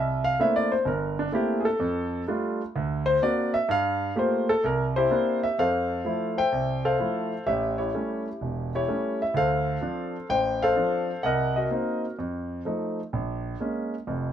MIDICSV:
0, 0, Header, 1, 2, 480
1, 0, Start_track
1, 0, Key_signature, -1, "major"
1, 0, Tempo, 471698
1, 1834, Time_signature, 4, 2, 24, 8
1, 14577, End_track
2, 0, Start_track
2, 0, Title_t, "Grand piano"
2, 0, Program_c, 0, 0
2, 0, Note_on_c, 0, 36, 71
2, 0, Note_on_c, 0, 76, 80
2, 238, Note_off_c, 0, 76, 0
2, 248, Note_on_c, 0, 77, 97
2, 336, Note_off_c, 0, 36, 0
2, 397, Note_off_c, 0, 77, 0
2, 402, Note_on_c, 0, 57, 54
2, 405, Note_on_c, 0, 58, 49
2, 407, Note_on_c, 0, 60, 50
2, 408, Note_on_c, 0, 64, 58
2, 409, Note_on_c, 0, 62, 51
2, 417, Note_on_c, 0, 76, 84
2, 562, Note_off_c, 0, 76, 0
2, 570, Note_on_c, 0, 74, 82
2, 718, Note_off_c, 0, 74, 0
2, 730, Note_on_c, 0, 72, 72
2, 736, Note_off_c, 0, 57, 0
2, 738, Note_off_c, 0, 58, 0
2, 739, Note_off_c, 0, 60, 0
2, 739, Note_off_c, 0, 64, 0
2, 740, Note_off_c, 0, 62, 0
2, 868, Note_on_c, 0, 31, 71
2, 878, Note_off_c, 0, 72, 0
2, 889, Note_on_c, 0, 70, 67
2, 1194, Note_off_c, 0, 70, 0
2, 1212, Note_on_c, 0, 62, 67
2, 1288, Note_off_c, 0, 31, 0
2, 1336, Note_off_c, 0, 62, 0
2, 1347, Note_on_c, 0, 57, 52
2, 1351, Note_on_c, 0, 62, 48
2, 1353, Note_on_c, 0, 58, 50
2, 1355, Note_on_c, 0, 60, 47
2, 1358, Note_on_c, 0, 64, 60
2, 1371, Note_on_c, 0, 67, 72
2, 1632, Note_on_c, 0, 68, 60
2, 1656, Note_off_c, 0, 68, 0
2, 1674, Note_off_c, 0, 67, 0
2, 1681, Note_on_c, 0, 69, 82
2, 1687, Note_off_c, 0, 57, 0
2, 1690, Note_off_c, 0, 62, 0
2, 1691, Note_off_c, 0, 58, 0
2, 1692, Note_off_c, 0, 60, 0
2, 1693, Note_off_c, 0, 64, 0
2, 1829, Note_on_c, 0, 41, 74
2, 2247, Note_off_c, 0, 41, 0
2, 2274, Note_off_c, 0, 69, 0
2, 2315, Note_on_c, 0, 55, 58
2, 2319, Note_on_c, 0, 57, 50
2, 2324, Note_on_c, 0, 62, 50
2, 2328, Note_on_c, 0, 65, 62
2, 2651, Note_off_c, 0, 55, 0
2, 2652, Note_off_c, 0, 57, 0
2, 2655, Note_off_c, 0, 62, 0
2, 2657, Note_off_c, 0, 65, 0
2, 2805, Note_on_c, 0, 38, 74
2, 3112, Note_on_c, 0, 72, 98
2, 3214, Note_off_c, 0, 38, 0
2, 3265, Note_off_c, 0, 72, 0
2, 3277, Note_on_c, 0, 58, 54
2, 3280, Note_on_c, 0, 60, 51
2, 3285, Note_on_c, 0, 74, 82
2, 3286, Note_on_c, 0, 62, 48
2, 3289, Note_on_c, 0, 66, 61
2, 3589, Note_off_c, 0, 74, 0
2, 3601, Note_on_c, 0, 76, 91
2, 3611, Note_off_c, 0, 58, 0
2, 3612, Note_off_c, 0, 60, 0
2, 3615, Note_off_c, 0, 62, 0
2, 3616, Note_off_c, 0, 66, 0
2, 3749, Note_off_c, 0, 76, 0
2, 3752, Note_on_c, 0, 43, 75
2, 3776, Note_on_c, 0, 77, 100
2, 4167, Note_off_c, 0, 43, 0
2, 4209, Note_off_c, 0, 77, 0
2, 4230, Note_on_c, 0, 57, 55
2, 4236, Note_on_c, 0, 58, 53
2, 4237, Note_on_c, 0, 67, 58
2, 4239, Note_on_c, 0, 65, 50
2, 4263, Note_on_c, 0, 72, 78
2, 4558, Note_off_c, 0, 72, 0
2, 4567, Note_off_c, 0, 57, 0
2, 4570, Note_off_c, 0, 58, 0
2, 4570, Note_off_c, 0, 67, 0
2, 4571, Note_off_c, 0, 65, 0
2, 4573, Note_on_c, 0, 69, 89
2, 4715, Note_off_c, 0, 69, 0
2, 4721, Note_on_c, 0, 36, 73
2, 4739, Note_on_c, 0, 70, 82
2, 4923, Note_off_c, 0, 70, 0
2, 5050, Note_on_c, 0, 72, 94
2, 5060, Note_on_c, 0, 67, 67
2, 5063, Note_on_c, 0, 64, 65
2, 5132, Note_off_c, 0, 36, 0
2, 5184, Note_off_c, 0, 64, 0
2, 5194, Note_on_c, 0, 58, 58
2, 5199, Note_on_c, 0, 60, 49
2, 5200, Note_on_c, 0, 64, 58
2, 5202, Note_on_c, 0, 62, 53
2, 5487, Note_off_c, 0, 72, 0
2, 5529, Note_off_c, 0, 58, 0
2, 5530, Note_on_c, 0, 76, 86
2, 5531, Note_off_c, 0, 60, 0
2, 5531, Note_off_c, 0, 64, 0
2, 5533, Note_off_c, 0, 62, 0
2, 5642, Note_off_c, 0, 67, 0
2, 5682, Note_off_c, 0, 76, 0
2, 5686, Note_on_c, 0, 41, 65
2, 5690, Note_on_c, 0, 77, 89
2, 5692, Note_on_c, 0, 72, 57
2, 5697, Note_on_c, 0, 69, 61
2, 6095, Note_off_c, 0, 41, 0
2, 6153, Note_on_c, 0, 53, 47
2, 6159, Note_on_c, 0, 57, 44
2, 6166, Note_on_c, 0, 64, 52
2, 6475, Note_off_c, 0, 72, 0
2, 6489, Note_off_c, 0, 53, 0
2, 6490, Note_on_c, 0, 72, 67
2, 6490, Note_on_c, 0, 76, 60
2, 6492, Note_off_c, 0, 57, 0
2, 6495, Note_off_c, 0, 64, 0
2, 6495, Note_on_c, 0, 79, 91
2, 6505, Note_off_c, 0, 77, 0
2, 6603, Note_off_c, 0, 69, 0
2, 6637, Note_on_c, 0, 36, 60
2, 6957, Note_off_c, 0, 72, 0
2, 6971, Note_on_c, 0, 69, 65
2, 6972, Note_on_c, 0, 72, 68
2, 6973, Note_on_c, 0, 77, 84
2, 6978, Note_off_c, 0, 79, 0
2, 7051, Note_off_c, 0, 36, 0
2, 7116, Note_on_c, 0, 53, 47
2, 7124, Note_on_c, 0, 57, 43
2, 7126, Note_on_c, 0, 64, 54
2, 7401, Note_off_c, 0, 76, 0
2, 7451, Note_off_c, 0, 53, 0
2, 7455, Note_off_c, 0, 57, 0
2, 7456, Note_off_c, 0, 64, 0
2, 7560, Note_off_c, 0, 69, 0
2, 7560, Note_off_c, 0, 72, 0
2, 7596, Note_on_c, 0, 67, 58
2, 7597, Note_on_c, 0, 73, 58
2, 7597, Note_on_c, 0, 76, 80
2, 7603, Note_on_c, 0, 33, 67
2, 7621, Note_off_c, 0, 77, 0
2, 7902, Note_off_c, 0, 73, 0
2, 7914, Note_off_c, 0, 67, 0
2, 7918, Note_on_c, 0, 73, 65
2, 7926, Note_off_c, 0, 76, 0
2, 7927, Note_on_c, 0, 64, 49
2, 7929, Note_on_c, 0, 67, 46
2, 8015, Note_off_c, 0, 33, 0
2, 8082, Note_on_c, 0, 55, 47
2, 8085, Note_on_c, 0, 57, 43
2, 8089, Note_on_c, 0, 61, 52
2, 8363, Note_off_c, 0, 73, 0
2, 8415, Note_off_c, 0, 55, 0
2, 8417, Note_off_c, 0, 57, 0
2, 8419, Note_off_c, 0, 61, 0
2, 8561, Note_on_c, 0, 28, 59
2, 8841, Note_off_c, 0, 64, 0
2, 8842, Note_off_c, 0, 67, 0
2, 8904, Note_on_c, 0, 64, 53
2, 8905, Note_on_c, 0, 67, 56
2, 8910, Note_on_c, 0, 73, 80
2, 8975, Note_off_c, 0, 28, 0
2, 9038, Note_on_c, 0, 55, 45
2, 9041, Note_on_c, 0, 57, 44
2, 9045, Note_on_c, 0, 61, 54
2, 9341, Note_off_c, 0, 73, 0
2, 9374, Note_off_c, 0, 55, 0
2, 9375, Note_off_c, 0, 57, 0
2, 9377, Note_off_c, 0, 61, 0
2, 9383, Note_on_c, 0, 76, 72
2, 9488, Note_off_c, 0, 64, 0
2, 9488, Note_off_c, 0, 67, 0
2, 9507, Note_on_c, 0, 38, 68
2, 9517, Note_off_c, 0, 76, 0
2, 9533, Note_on_c, 0, 77, 90
2, 9536, Note_on_c, 0, 69, 59
2, 9538, Note_on_c, 0, 72, 62
2, 9928, Note_off_c, 0, 38, 0
2, 9986, Note_on_c, 0, 53, 50
2, 9989, Note_on_c, 0, 60, 45
2, 9998, Note_on_c, 0, 62, 52
2, 10329, Note_off_c, 0, 53, 0
2, 10330, Note_off_c, 0, 60, 0
2, 10335, Note_off_c, 0, 62, 0
2, 10444, Note_off_c, 0, 77, 0
2, 10446, Note_off_c, 0, 69, 0
2, 10447, Note_off_c, 0, 72, 0
2, 10477, Note_on_c, 0, 33, 61
2, 10480, Note_on_c, 0, 79, 95
2, 10493, Note_on_c, 0, 72, 67
2, 10810, Note_off_c, 0, 79, 0
2, 10812, Note_on_c, 0, 77, 93
2, 10813, Note_off_c, 0, 72, 0
2, 10824, Note_on_c, 0, 69, 66
2, 10828, Note_on_c, 0, 72, 70
2, 10894, Note_off_c, 0, 33, 0
2, 10952, Note_on_c, 0, 53, 50
2, 10954, Note_on_c, 0, 60, 43
2, 10958, Note_on_c, 0, 62, 54
2, 11292, Note_off_c, 0, 53, 0
2, 11293, Note_off_c, 0, 60, 0
2, 11295, Note_off_c, 0, 62, 0
2, 11403, Note_off_c, 0, 77, 0
2, 11409, Note_off_c, 0, 69, 0
2, 11411, Note_off_c, 0, 72, 0
2, 11430, Note_on_c, 0, 78, 84
2, 11437, Note_on_c, 0, 36, 67
2, 11452, Note_on_c, 0, 70, 65
2, 11455, Note_on_c, 0, 75, 62
2, 11748, Note_off_c, 0, 75, 0
2, 11763, Note_on_c, 0, 75, 65
2, 11765, Note_off_c, 0, 78, 0
2, 11766, Note_off_c, 0, 70, 0
2, 11777, Note_on_c, 0, 66, 47
2, 11782, Note_on_c, 0, 70, 46
2, 11854, Note_off_c, 0, 36, 0
2, 11914, Note_on_c, 0, 58, 49
2, 11915, Note_on_c, 0, 60, 46
2, 11919, Note_on_c, 0, 63, 53
2, 12208, Note_off_c, 0, 75, 0
2, 12253, Note_off_c, 0, 58, 0
2, 12254, Note_off_c, 0, 60, 0
2, 12256, Note_off_c, 0, 63, 0
2, 12366, Note_off_c, 0, 66, 0
2, 12368, Note_off_c, 0, 70, 0
2, 12400, Note_on_c, 0, 41, 60
2, 12817, Note_off_c, 0, 41, 0
2, 12875, Note_on_c, 0, 53, 45
2, 12883, Note_on_c, 0, 57, 41
2, 12886, Note_on_c, 0, 63, 51
2, 13215, Note_off_c, 0, 53, 0
2, 13219, Note_off_c, 0, 57, 0
2, 13220, Note_off_c, 0, 63, 0
2, 13362, Note_on_c, 0, 34, 64
2, 13778, Note_off_c, 0, 34, 0
2, 13843, Note_on_c, 0, 56, 45
2, 13845, Note_on_c, 0, 58, 42
2, 13851, Note_on_c, 0, 61, 54
2, 14179, Note_off_c, 0, 56, 0
2, 14180, Note_off_c, 0, 58, 0
2, 14183, Note_off_c, 0, 61, 0
2, 14320, Note_on_c, 0, 29, 65
2, 14320, Note_on_c, 0, 41, 61
2, 14577, Note_off_c, 0, 29, 0
2, 14577, Note_off_c, 0, 41, 0
2, 14577, End_track
0, 0, End_of_file